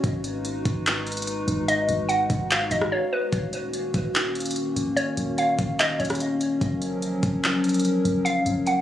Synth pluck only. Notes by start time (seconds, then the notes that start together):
1.68 D#5
2.09 F#5
2.51 F5
2.71 D#5
2.92 C#5
3.13 B4
4.96 C#5
5.38 F5
5.80 D#5
6.00 C#5
8.25 F5
8.67 F#5